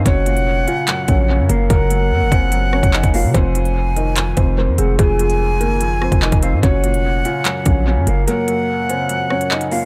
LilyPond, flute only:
\new Staff \with { instrumentName = "Flute" } { \time 4/4 \key ges \lydian \tempo 4 = 146 ges''2.~ ges''8 f''8 | ges''2.~ ges''8 f''8 | aes''2.~ aes''8 ges''8 | aes''2.~ aes''8 f''8 |
ges''2.~ ges''8 f''8 | ges''2.~ ges''8 f''8 | }